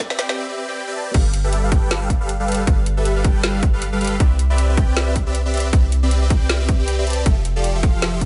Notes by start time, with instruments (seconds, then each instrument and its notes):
Already playing: 808-style bass C2
0.10 supersaw synth C4 G4 B4 D5 E5, snare
0.19 supersaw synth C4 G4 B4 D5 G5, snare, closed hi-hat
0.29 snare
0.38 supersaw synth C4 G4 B4 D5 E5
0.49 supersaw synth C4 G4 B4 D5 E5
0.57 supersaw synth C4 G4 B4 D5 E5
0.68 supersaw synth C4 G4 B4 D5 G5
0.87 supersaw synth C4 G4 B4 D5 E5
0.96 supersaw synth C4 G4 B4 D5 A5
1.14 808-style bass G1, supersaw synth G3 G4 A4 B4 F5, kick, closed hi-hat, crash
1.34 closed hi-hat
1.44 supersaw synth G3 G4 A4 B4 E5
1.53 closed hi-hat
1.63 supersaw synth G3 G4 A4 B4 F5
1.72 supersaw synth G3 G4 A4 B4 G5, kick, closed hi-hat
1.91 supersaw synth G3 G4 A4 B4 F5, snare, closed hi-hat
2.01 supersaw synth G3 G4 A4 B4 F5
2.10 kick, closed hi-hat
2.21 supersaw synth G3 G4 A4 B4 F5
2.29 closed hi-hat
2.40 supersaw synth G3 G4 A4 B4 F5
2.48 supersaw synth G3 G4 A4 B4 F5, closed hi-hat
2.52 closed hi-hat
2.55 closed hi-hat
2.67 808-style bass G1, supersaw synth G3 G4 A4 B4 F5, kick, closed hi-hat
2.86 closed hi-hat
2.97 supersaw synth G3 G4 A4 B4 E5
3.05 closed hi-hat
3.16 supersaw synth G3 G4 A4 B4 F5
3.24 supersaw synth G3 G4 A4 B4 G5, kick, closed hi-hat
3.43 supersaw synth G3 G4 A4 B4 F5, snare, closed hi-hat
3.54 supersaw synth G3 G4 A4 B4 F5
3.63 kick, closed hi-hat
3.73 supersaw synth G3 G4 A4 B4 F5
3.82 closed hi-hat
3.92 supersaw synth G3 G4 A4 B4 F5
4.01 supersaw synth G3 G4 A4 B4 F5, closed hi-hat
4.05 closed hi-hat
4.07 closed hi-hat
4.20 808-style bass C2, supersaw synth C4 G4 B4 D5 E5, kick, closed hi-hat
4.39 closed hi-hat
4.50 supersaw synth C4 G4 B4 D5 E5
4.58 closed hi-hat
4.69 supersaw synth C4 G4 B4 D5 E5
4.77 supersaw synth C4 G4 B4 D5 G5, kick, closed hi-hat
4.97 supersaw synth C4 G4 B4 D5 E5, snare, closed hi-hat
5.07 supersaw synth C4 G4 B4 D5 E5
5.16 kick, closed hi-hat
5.26 supersaw synth C4 G4 B4 D5 E5
5.35 closed hi-hat
5.46 supersaw synth C4 G4 B4 D5 E5
5.54 supersaw synth C4 G4 B4 D5 E5, closed hi-hat
5.57 closed hi-hat
5.60 closed hi-hat
5.73 808-style bass C2, supersaw synth C4 G4 B4 D5 E5, kick, closed hi-hat
5.92 closed hi-hat
6.03 supersaw synth C4 G4 B4 D5 E5
6.11 closed hi-hat
6.22 supersaw synth C4 G4 B4 D5 E5
6.30 supersaw synth C4 G4 B4 D5 G5, kick, closed hi-hat
6.49 supersaw synth C4 G4 B4 D5 E5, snare, closed hi-hat
6.60 supersaw synth C4 G4 B4 D5 E5
6.68 supersaw synth C4 G4 B4 D5 E5, kick, closed hi-hat
6.79 supersaw synth C4 G4 B4 D5 G5
6.88 closed hi-hat
6.98 supersaw synth C4 G4 B4 D5 E5
7.07 supersaw synth C4 G4 B4 D5 A5, closed hi-hat
7.10 closed hi-hat
7.13 closed hi-hat
7.26 808-style bass F1, supersaw synth F3 F4 G4 A4 E5, kick, closed hi-hat
7.45 closed hi-hat
7.56 supersaw synth F3 F4 G4 A4 D5
7.64 closed hi-hat
7.75 supersaw synth F3 F4 G4 A4 E5
7.83 supersaw synth F3 F4 G4 A4 F5, kick, closed hi-hat
8.02 supersaw synth F3 F4 G4 A4 E5, snare, closed hi-hat
8.13 supersaw synth F3 F4 G4 A4 E5
8.21 kick, closed hi-hat